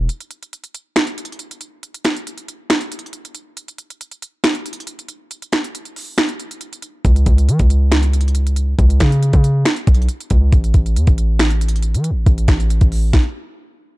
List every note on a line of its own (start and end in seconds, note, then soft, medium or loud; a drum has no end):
0.09 closed hi-hat medium
0.20 closed hi-hat medium
0.31 closed hi-hat medium
0.43 closed hi-hat medium
0.53 closed hi-hat medium
0.64 closed hi-hat medium
0.75 closed hi-hat medium
0.96 finger snap medium
0.96 snare loud
0.96 closed hi-hat medium
1.07 closed hi-hat medium
1.18 closed hi-hat medium
1.25 closed hi-hat medium
1.32 closed hi-hat soft
1.39 closed hi-hat medium
1.51 closed hi-hat medium
1.61 closed hi-hat medium
1.83 closed hi-hat medium
1.94 closed hi-hat medium
2.05 finger snap medium
2.05 snare medium
2.05 closed hi-hat medium
2.17 closed hi-hat medium
2.27 closed hi-hat medium
2.38 closed hi-hat medium
2.48 closed hi-hat medium
2.70 finger snap medium
2.70 snare loud
2.70 closed hi-hat medium
2.81 closed hi-hat medium
2.92 closed hi-hat medium
2.99 closed hi-hat medium
3.06 closed hi-hat soft
3.13 closed hi-hat medium
3.25 closed hi-hat medium
3.35 closed hi-hat medium
3.57 closed hi-hat medium
3.68 closed hi-hat medium
3.78 closed hi-hat medium
3.90 closed hi-hat medium
4.01 closed hi-hat medium
4.11 closed hi-hat medium
4.22 closed hi-hat medium
4.44 finger snap medium
4.44 snare loud
4.44 closed hi-hat medium
4.55 closed hi-hat medium
4.66 closed hi-hat medium
4.73 closed hi-hat medium
4.80 closed hi-hat soft
4.87 closed hi-hat medium
4.99 closed hi-hat medium
5.08 closed hi-hat medium
5.31 closed hi-hat medium
5.42 closed hi-hat medium
5.52 finger snap medium
5.52 snare medium
5.52 closed hi-hat medium
5.64 closed hi-hat medium
5.75 closed hi-hat medium
5.85 closed hi-hat medium
5.96 open hi-hat medium
6.18 finger snap medium
6.18 snare loud
6.18 closed hi-hat medium
6.29 closed hi-hat medium
6.40 closed hi-hat medium
6.51 closed hi-hat medium
6.61 closed hi-hat medium
6.73 closed hi-hat medium
6.82 closed hi-hat medium
7.05 7.26 C#2 loud
7.05 kick loud
7.05 closed hi-hat medium
7.16 closed hi-hat medium
7.26 7.50 C#2 loud
7.26 kick loud
7.26 closed hi-hat medium
7.38 closed hi-hat medium
7.48 7.59 E3 loud
7.48 closed hi-hat medium
7.59 8.75 C#2 loud
7.59 kick medium
7.59 closed hi-hat medium
7.70 closed hi-hat medium
7.92 finger snap medium
7.92 snare loud
7.92 closed hi-hat medium
8.03 closed hi-hat medium
8.13 closed hi-hat medium
8.21 closed hi-hat medium
8.28 closed hi-hat soft
8.35 closed hi-hat medium
8.47 closed hi-hat medium
8.56 closed hi-hat medium
8.79 8.99 C#2 loud
8.79 kick loud
8.79 closed hi-hat medium
8.90 closed hi-hat medium
9.00 9.32 C#3 loud
9.00 finger snap medium
9.00 kick medium
9.00 snare medium
9.00 closed hi-hat medium
9.12 closed hi-hat medium
9.23 closed hi-hat medium
9.33 9.64 C#3 medium
9.33 kick loud
9.33 closed hi-hat medium
9.44 closed hi-hat medium
9.65 finger snap medium
9.65 snare loud
9.65 closed hi-hat medium
9.76 closed hi-hat medium
9.87 10.08 B1 loud
9.87 kick medium
9.87 closed hi-hat medium
9.95 closed hi-hat medium
10.02 closed hi-hat soft
10.09 closed hi-hat medium
10.20 closed hi-hat medium
10.30 10.52 C#2 loud
10.30 kick loud
10.30 closed hi-hat medium
10.52 10.73 A1 loud
10.52 kick loud
10.52 closed hi-hat medium
10.64 closed hi-hat medium
10.74 10.98 A1 loud
10.74 kick medium
10.74 closed hi-hat medium
10.86 closed hi-hat medium
10.96 11.07 E2 loud
10.96 closed hi-hat medium
11.07 11.96 A1 loud
11.07 kick loud
11.07 closed hi-hat medium
11.18 closed hi-hat medium
11.39 finger snap medium
11.39 snare loud
11.39 closed hi-hat medium
11.50 closed hi-hat medium
11.61 closed hi-hat medium
11.68 closed hi-hat medium
11.76 closed hi-hat soft
11.82 closed hi-hat medium
11.94 12.12 E3 loud
11.94 closed hi-hat medium
12.04 closed hi-hat medium
12.10 12.26 A1 loud
12.26 12.47 A1 loud
12.26 kick loud
12.26 closed hi-hat medium
12.38 closed hi-hat medium
12.48 12.80 A1 loud
12.48 finger snap medium
12.48 kick medium
12.48 snare medium
12.48 closed hi-hat medium
12.60 closed hi-hat medium
12.70 closed hi-hat medium
12.81 13.12 A1 loud
12.81 kick medium
12.81 closed hi-hat medium
12.92 open hi-hat medium
13.13 kick loud
13.13 snare medium